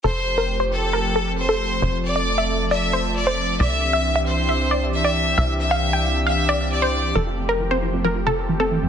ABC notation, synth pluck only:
X:1
M:4/4
L:1/16
Q:1/4=135
K:F
V:1 name="Synth pluck"
A2 z B z c2 z B z A2 z A2 z | c2 z d z e2 z d z c2 z c2 z | d2 z e z e2 z e z d2 z d2 z | e2 z f z g2 z f z d2 z c2 z |
A2 z B z c2 z B z A2 z A2 z |]